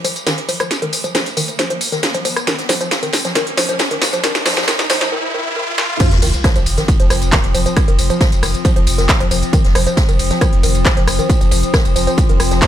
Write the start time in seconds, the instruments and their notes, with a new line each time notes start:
Already playing: riser
0.04 synth arpeggio sound F3, open hi-hat, ride, tambourine
0.16 closed hi-hat, ride, tambourine
0.27 synth arpeggio sound D#3, snare, closed hi-hat, ride, tambourine
0.38 closed hi-hat
0.49 synth arpeggio sound F3, open hi-hat, ride, tambourine
0.60 synth arpeggio sound F3, cross-stick, closed hi-hat, tambourine
0.71 snare, closed hi-hat, ride, tambourine
0.82 synth arpeggio sound D#3, closed hi-hat
0.93 open hi-hat, ride, tambourine
1.04 synth arpeggio sound F3, closed hi-hat, tambourine
1.15 synth arpeggio sound F3, snare, closed hi-hat, ride, tambourine
1.26 closed hi-hat, ride, tambourine
1.37 synth arpeggio sound D#3, open hi-hat, ride, tambourine
1.48 closed hi-hat, tambourine
1.59 synth arpeggio sound F3, snare, closed hi-hat, ride, tambourine
1.70 synth arpeggio sound F3, closed hi-hat
1.81 open hi-hat, ride, tambourine
1.92 synth arpeggio sound D#3, snare, closed hi-hat, tambourine
2.03 snare, closed hi-hat, ride, tambourine
2.14 synth arpeggio sound F3, closed hi-hat, ride
2.25 synth arpeggio sound F3, open hi-hat, ride, tambourine
2.36 cross-stick, closed hi-hat, tambourine
2.47 synth arpeggio sound D#3, snare, closed hi-hat, ride, tambourine
2.58 snare, closed hi-hat
2.69 synth arpeggio sound F3, snare, open hi-hat, ride, tambourine
2.81 synth arpeggio sound F3, closed hi-hat, tambourine
2.91 snare, closed hi-hat, ride, tambourine
3.03 synth arpeggio sound D#3, closed hi-hat, tambourine
3.12 snare, open hi-hat, ride, tambourine
3.25 synth arpeggio sound F3, snare, closed hi-hat, tambourine
3.35 synth arpeggio sound D#3, snare, closed hi-hat, ride, tambourine
3.47 closed hi-hat
3.57 synth arpeggio sound F3, snare, open hi-hat, ride, tambourine
3.69 synth arpeggio sound F3, closed hi-hat, ride, tambourine
3.79 snare, closed hi-hat, ride, tambourine
3.91 synth arpeggio sound D#3, closed hi-hat
4.01 snare, open hi-hat, ride, tambourine
4.13 synth arpeggio sound F3, closed hi-hat, tambourine
4.24 synth arpeggio sound D#3, snare, closed hi-hat, ride, tambourine
4.35 snare, closed hi-hat, tambourine
4.46 synth arpeggio sound F3, snare, open hi-hat, ride, tambourine
4.51 snare, ride
4.56 synth arpeggio sound F3, snare, closed hi-hat, ride, tambourine
4.62 snare, ride
4.68 synth arpeggio sound D#3, snare, closed hi-hat, ride, tambourine
4.79 snare, closed hi-hat, ride, tambourine
4.90 synth arpeggio sound F3, snare, open hi-hat, ride, tambourine
5.01 synth arpeggio sound F3, snare, closed hi-hat, tambourine
5.12 synth arpeggio sound D#3
5.34 synth arpeggio sound D#3
5.56 synth arpeggio sound D#3
5.78 synth arpeggio sound D#3, snare
6.00 synth drone F3 C4, synth arpeggio sound F3, kick, closed hi-hat, crash, ride, tambourine, sub drop
6.11 sub bass F1, snare, closed hi-hat
6.22 sub bass F1, synth arpeggio sound D#3, open hi-hat, ride, tambourine
6.34 closed hi-hat, tambourine
6.44 synth arpeggio sound F3, kick, cross-stick, snare, closed hi-hat, ride, tambourine
6.56 sub bass F1, synth arpeggio sound F3, closed hi-hat, tambourine
6.66 sub bass F1, open hi-hat, ride, tambourine
6.78 synth arpeggio sound D#3, snare, closed hi-hat, tambourine
6.88 kick, closed hi-hat, ride, tambourine
7.00 sub bass F1, synth arpeggio sound F3, closed hi-hat
7.10 sub bass F1, synth arpeggio sound F3, cross-stick, open hi-hat, ride, tambourine
7.22 sub bass F1, closed hi-hat, ride, tambourine
7.32 synth arpeggio sound D#3, kick, snare, clap, closed hi-hat, ride, tambourine
7.44 sub bass F1, closed hi-hat
7.54 sub bass F1, synth arpeggio sound F3, open hi-hat, ride, tambourine
7.66 synth arpeggio sound F3, closed hi-hat, tambourine
7.77 kick, cross-stick, closed hi-hat, ride, tambourine
7.88 sub bass F1, synth arpeggio sound D#3, closed hi-hat
7.98 sub bass F1, open hi-hat, ride, tambourine
8.10 synth arpeggio sound F3, closed hi-hat, tambourine
8.21 synth arpeggio sound F3, kick, snare, closed hi-hat, ride, tambourine
8.32 sub bass F1, closed hi-hat, ride, tambourine
8.43 sub bass F1, synth arpeggio sound D#3, cross-stick, open hi-hat, ride, tambourine
8.54 closed hi-hat, tambourine
8.65 synth arpeggio sound F3, kick, closed hi-hat, ride, tambourine
8.76 sub bass F1, synth arpeggio sound F3, closed hi-hat
8.87 sub bass F1, open hi-hat, ride, tambourine
8.98 sub bass F1, synth arpeggio sound D#3, snare, closed hi-hat, tambourine
9.09 kick, cross-stick, snare, clap, closed hi-hat, ride, tambourine
9.20 sub bass F1, synth arpeggio sound F3, closed hi-hat, ride
9.31 sub bass F1, synth arpeggio sound F3, open hi-hat, ride, tambourine
9.42 closed hi-hat, tambourine
9.53 synth arpeggio sound D#3, kick, closed hi-hat, ride, tambourine
9.64 sub bass F1, snare, closed hi-hat
9.75 sub bass F1, synth arpeggio sound F3, cross-stick, open hi-hat, ride, tambourine
9.87 synth arpeggio sound F3, closed hi-hat, tambourine
9.96 kick, snare, closed hi-hat, ride, tambourine
10.09 sub bass F1, synth arpeggio sound D#3, closed hi-hat, tambourine
10.19 sub bass F1, open hi-hat, ride, tambourine
10.30 synth arpeggio sound F3, snare, closed hi-hat, tambourine
10.41 synth arpeggio sound F3, kick, cross-stick, closed hi-hat, ride, tambourine
10.53 sub bass F1, closed hi-hat
10.63 sub bass F1, synth arpeggio sound D#3, open hi-hat, ride, tambourine
10.75 sub bass F1, closed hi-hat, ride, tambourine
10.85 synth arpeggio sound F3, kick, snare, clap, closed hi-hat, ride, tambourine
10.97 sub bass F1, synth arpeggio sound F3, closed hi-hat
11.07 sub bass F1, cross-stick, open hi-hat, ride, tambourine
11.19 synth arpeggio sound D#3, closed hi-hat, tambourine
11.30 kick, closed hi-hat, ride, tambourine
11.41 sub bass F1, synth arpeggio sound F3, closed hi-hat, tambourine
11.51 sub bass F1, synth arpeggio sound F3, open hi-hat, ride, tambourine
11.63 closed hi-hat, tambourine
11.74 synth arpeggio sound D#3, kick, cross-stick, snare, closed hi-hat, ride, tambourine
11.85 sub bass F1, closed hi-hat, ride, tambourine
11.96 sub bass F1, synth arpeggio sound F3, open hi-hat, ride, tambourine
12.07 synth arpeggio sound F3, closed hi-hat, tambourine
12.18 kick, closed hi-hat, ride, tambourine
12.29 sub bass F1, synth arpeggio sound D#3, closed hi-hat
12.40 sub bass F1, cross-stick, open hi-hat, ride, tambourine
12.51 sub bass F1, synth arpeggio sound F3, snare, closed hi-hat, tambourine
12.62 synth arpeggio sound F3, kick, snare, clap, closed hi-hat, ride, tambourine